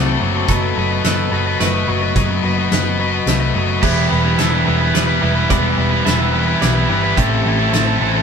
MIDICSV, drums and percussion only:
0, 0, Header, 1, 2, 480
1, 0, Start_track
1, 0, Key_signature, 1, "minor"
1, 0, Tempo, 557621
1, 412, Time_signature, 3, 2, 24, 8
1, 7079, End_track
2, 0, Start_track
2, 0, Title_t, "Drums"
2, 415, Note_on_c, 9, 42, 91
2, 418, Note_on_c, 9, 36, 108
2, 501, Note_off_c, 9, 42, 0
2, 504, Note_off_c, 9, 36, 0
2, 899, Note_on_c, 9, 38, 92
2, 899, Note_on_c, 9, 42, 83
2, 985, Note_off_c, 9, 38, 0
2, 985, Note_off_c, 9, 42, 0
2, 1380, Note_on_c, 9, 38, 82
2, 1380, Note_on_c, 9, 42, 77
2, 1466, Note_off_c, 9, 38, 0
2, 1466, Note_off_c, 9, 42, 0
2, 1858, Note_on_c, 9, 36, 119
2, 1859, Note_on_c, 9, 42, 77
2, 1944, Note_off_c, 9, 36, 0
2, 1945, Note_off_c, 9, 42, 0
2, 2339, Note_on_c, 9, 38, 92
2, 2339, Note_on_c, 9, 42, 80
2, 2425, Note_off_c, 9, 38, 0
2, 2425, Note_off_c, 9, 42, 0
2, 2815, Note_on_c, 9, 38, 93
2, 2815, Note_on_c, 9, 42, 82
2, 2901, Note_off_c, 9, 38, 0
2, 2901, Note_off_c, 9, 42, 0
2, 3296, Note_on_c, 9, 36, 117
2, 3296, Note_on_c, 9, 49, 104
2, 3382, Note_off_c, 9, 36, 0
2, 3382, Note_off_c, 9, 49, 0
2, 3775, Note_on_c, 9, 38, 90
2, 3775, Note_on_c, 9, 42, 82
2, 3861, Note_off_c, 9, 38, 0
2, 3861, Note_off_c, 9, 42, 0
2, 4259, Note_on_c, 9, 38, 86
2, 4259, Note_on_c, 9, 42, 86
2, 4345, Note_off_c, 9, 38, 0
2, 4345, Note_off_c, 9, 42, 0
2, 4737, Note_on_c, 9, 36, 127
2, 4737, Note_on_c, 9, 42, 85
2, 4823, Note_off_c, 9, 36, 0
2, 4823, Note_off_c, 9, 42, 0
2, 5220, Note_on_c, 9, 38, 92
2, 5220, Note_on_c, 9, 42, 77
2, 5306, Note_off_c, 9, 38, 0
2, 5306, Note_off_c, 9, 42, 0
2, 5698, Note_on_c, 9, 38, 82
2, 5698, Note_on_c, 9, 42, 72
2, 5784, Note_off_c, 9, 38, 0
2, 5784, Note_off_c, 9, 42, 0
2, 6176, Note_on_c, 9, 36, 114
2, 6178, Note_on_c, 9, 42, 79
2, 6262, Note_off_c, 9, 36, 0
2, 6264, Note_off_c, 9, 42, 0
2, 6658, Note_on_c, 9, 38, 91
2, 6658, Note_on_c, 9, 42, 77
2, 6744, Note_off_c, 9, 38, 0
2, 6744, Note_off_c, 9, 42, 0
2, 7079, End_track
0, 0, End_of_file